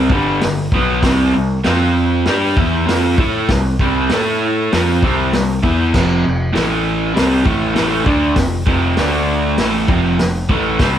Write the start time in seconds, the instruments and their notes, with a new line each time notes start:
Already playing: overdriven electric guitar G3 C4
0.10 picked electric bass G1, overdriven electric guitar G2 D3 G3, kick
0.41 picked electric bass G1, overdriven electric guitar G2 D3, snare, open hi-hat
0.72 picked electric bass B1, overdriven electric guitar B2 F#3, kick
0.76 overdriven electric guitar B3
1.03 picked electric bass C2, overdriven electric guitar C3 G3 C4, kick, snare, open hi-hat
1.35 picked electric bass C2, overdriven electric guitar C3 G3
1.64 picked electric bass F2, overdriven electric guitar F3 C4 F4, snare, open hi-hat
2.25 picked electric bass G2, overdriven electric guitar G3 D4 G4, snare, open hi-hat
2.57 picked electric bass E2, overdriven electric guitar E3 B3 E4, kick
2.86 picked electric bass F2, overdriven electric guitar F3 C4 F4, snare, open hi-hat
3.18 picked electric bass A2, overdriven electric guitar A3 E4 A4, kick
3.48 picked electric bass C2, overdriven electric guitar C3 G3, kick, snare, open hi-hat
3.79 picked electric bass C2, overdriven electric guitar C3 G3 C4, kick
4.09 picked electric bass A2, overdriven electric guitar A3 E4, snare, open hi-hat
4.14 overdriven electric guitar A4
4.72 picked electric bass F2, overdriven electric guitar F3 C4 F4, snare, open hi-hat
5.03 picked electric bass C2, overdriven electric guitar C3 G3 C4, kick
5.33 picked electric bass C2, overdriven electric guitar C3 G3, snare, open hi-hat
5.63 picked electric bass E2, overdriven electric guitar E3 B3 E4, kick
5.94 picked electric bass F1, overdriven electric guitar F2 C3 F3, kick, snare, crash
6.25 picked electric bass F1, overdriven electric guitar F2 C3
6.53 overdriven electric guitar A2 E3 A3, snare, open hi-hat
6.57 picked electric bass A1
7.14 picked electric bass C2, overdriven electric guitar C3 G3 C4, snare, open hi-hat
7.44 picked electric bass A1, overdriven electric guitar A2 E3 A3, kick
7.74 overdriven electric guitar A2 E3 A3, snare, open hi-hat
7.79 picked electric bass A1
8.04 picked electric bass D2, overdriven electric guitar D3 A3 D4, kick
8.36 picked electric bass F1, overdriven electric guitar F2 C3, kick, snare, open hi-hat
8.66 picked electric bass F1, overdriven electric guitar F2 C3 F3, kick
8.97 picked electric bass D2, overdriven electric guitar D3 A3 D4, snare, open hi-hat
9.58 picked electric bass A1, overdriven electric guitar A2 E3 A3, snare, open hi-hat
9.88 picked electric bass F1, overdriven electric guitar F2 C3 F3, kick
10.18 picked electric bass F1, overdriven electric guitar F2 C3, snare, open hi-hat
10.49 picked electric bass A1, overdriven electric guitar A2 E3 A3, kick
10.79 picked electric bass C2, overdriven electric guitar C3 G3 C4, kick, snare, open hi-hat